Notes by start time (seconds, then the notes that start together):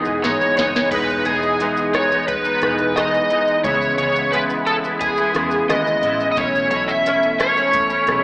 Already playing: E3 G#3 B3 D#4 G#4
0.05 E1, shaker
0.23 G#1 E3 G#3 B3 D#4 C#5, snare, closed hi-hat, shaker
0.41 shaker
0.57 F#1 E3 G#3 B3 D#4 C#5, snare, closed hi-hat, shaker
0.74 snare, shaker
0.90 E1 E3 G#3 B3 D#4 G#4 B4, kick, closed hi-hat, crash, shaker
0.94 D#4
1.10 shaker
1.25 E1 E3 G#3 B3 D#4 G#4, closed hi-hat, shaker
1.43 shaker
1.60 E3 G#3 B3 D#4, closed hi-hat, shaker
1.77 shaker
1.94 E3 G#3 B3 C#5, cross-stick, closed hi-hat, shaker
1.98 D#4
2.11 G#3 B3 D#4, shaker
2.28 B4, kick, closed hi-hat, shaker
2.45 B3 D#4, shaker
2.49 G#3
2.61 E1 E3 G#3 B3 D#4 G#4, cross-stick, closed hi-hat, shaker
2.66 D#4
2.78 shaker
2.96 E3 G#3 B3 D#4 D#5, cross-stick, closed hi-hat, shaker
3.14 shaker
3.30 E3 G#3 B3, closed hi-hat, shaker
3.34 D#4
3.47 shaker
3.63 C#2 C#3 E3 G#3 B3 C#4 G#4 C#5, kick, closed hi-hat, shaker
3.67 E4
3.82 shaker
3.98 C#2 C#3 G#3 B3 C#5, closed hi-hat, shaker
4.02 E4
4.16 shaker
4.32 C#3 G#3 B3 E4 B4, closed hi-hat, shaker
4.50 shaker
4.66 C#3 G#3 B3 A4, closed hi-hat, shaker
4.70 E4
4.83 G#3 B3 E4, shaker
5.01 G#4, kick, closed hi-hat, shaker
5.17 G#3 B3 E4, shaker
5.34 E2 C#3 G#3 B3 C#4 E4 G#4, cross-stick, closed hi-hat, shaker
5.38 E4
5.51 shaker
5.69 D#2 C#3 G#3 B3 E4 D#5, cross-stick, closed hi-hat, shaker
5.87 shaker
6.02 A1 C#3 G#3 B3 E4, closed hi-hat, shaker
6.20 shaker
6.32 D#5
6.36 B1 B2 E3 A3 B3 C#4 E4 A4 C#5, kick, closed hi-hat, shaker
6.55 shaker
6.71 B1 B2 A3 C#4 E4 C#5, closed hi-hat, shaker
6.88 E5, shaker
7.06 B2 A3 C#4 E4, closed hi-hat, shaker
7.23 shaker
7.39 B2 A3 C#4 C#5, cross-stick, closed hi-hat, shaker
7.43 E4
7.56 A3 C#4 E4, shaker
7.73 kick, closed hi-hat, shaker
7.90 A3 C#4 E4, shaker
8.07 B1 B2 E3 A3 B3 C#4 G#4, cross-stick, closed hi-hat, shaker
8.11 E4